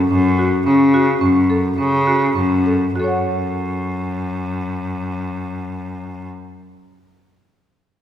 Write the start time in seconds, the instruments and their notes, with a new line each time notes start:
0.11 cello F#2, marimba C#4
0.39 marimba F#4
0.67 cello C#3, marimba C#4
0.94 marimba F#4
1.21 cello F#2, marimba C#4
1.50 marimba A4
1.78 cello C#3, marimba C#4
2.07 marimba F#4
2.36 cello F#2, marimba C#4
2.66 marimba A4
2.96 cello F#2, marimba F#4
3.00 marimba A4
3.04 marimba C#5 F#5